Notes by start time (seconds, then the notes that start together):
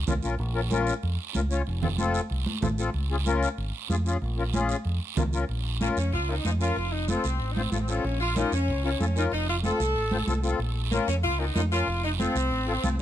0.07 C2 C#4 F4 A#4, high conga, low conga, short guiro
0.23 A#1 C#4 F4 A#4, short guiro
0.39 A#1, long guiro
0.54 C#4 F4 A#4
0.71 C#4 F4 A#4, high conga, short guiro
0.87 short guiro
1.03 F2, long guiro
1.34 C#2 C#4 F4 A#4, high conga, short guiro
1.50 C#4 F4 C#5, short guiro
1.67 F1, long guiro
1.82 C4 F4 A4, low conga
1.98 C4 F4 A4, high conga, short guiro
2.14 short guiro
2.30 C2, long guiro
2.46 high conga
2.62 A1 C4 F4 A4, high conga, low conga, short guiro
2.78 C4 F4 A4, short guiro
2.94 C#2, long guiro
3.10 C#4 F4 G#4
3.26 C#4 F4 A#4, high conga, short guiro
3.43 short guiro
3.58 G#1, long guiro
3.90 F2 C#4 F4 G#4, high conga, short guiro
4.06 C#4 F4 G#4, short guiro
4.22 A#1, long guiro
4.37 C#4 F4 A#4
4.54 C#4 F4 G#4, high conga, short guiro
4.69 short guiro
4.85 F2, long guiro
5.17 C#2 C#4 F4 A#4, high conga, low conga, short guiro
5.33 C#4 F4 A#4, short guiro
5.49 A#1, long guiro
5.81 A#3 C#4 F4 A#4, high conga, short guiro
5.97 F2 C#4, short guiro
6.12 C#2 F4, long guiro
6.29 C#4 D#4 F4 A#4
6.44 F2 C#4 D#4 F4 C5, high conga, short guiro
6.60 C#4 F4 A#4, short guiro
6.76 F1, long guiro
6.93 D#4
7.08 C4 F4 A4, high conga, short guiro
7.24 C2, short guiro
7.40 A1, long guiro
7.52 C4 D#4
7.56 F4 C5, high conga
7.60 C4
7.71 A1 A3 C4 F4 A4, high conga, short guiro
7.80 C4
7.88 C4 C#4 F4 A4, short guiro
8.04 A#1, long guiro
8.21 F4
8.36 C#4 D#4 F4 A#4, high conga, short guiro
8.52 F2 C#4, short guiro
8.68 C#2, long guiro
8.84 C#4 F4 A#4
9.00 F2 C#4 F4 A4, high conga, short guiro
9.16 C#4 D#4 F4 A#4, short guiro
9.32 F1 D#4, long guiro
9.49 F4
9.63 C4 F4 A4, high conga, short guiro
9.80 C2, short guiro
9.96 A1, long guiro
10.11 C4 F4 C5, high conga
10.27 C2 C4 F4 A4, high conga, short guiro
10.43 C4 F4 A4, short guiro
10.59 A#1, long guiro
10.91 A#3 C#4 F4 A#4, high conga, short guiro
11.08 F2 C#4, short guiro
11.24 C#2 F4, long guiro
11.39 C#4 D#4 F4 A#4
11.55 F2 C#4 D#4 F4 A#4, high conga, short guiro
11.72 C#4 F4 A#4, short guiro
11.87 F1, long guiro
12.04 D#4
12.19 C4 F4 A4, high conga, short guiro
12.35 C2, short guiro
12.51 A1, long guiro
12.67 C4 F4 A4
12.83 C2 C4 F4 A4, high conga, short guiro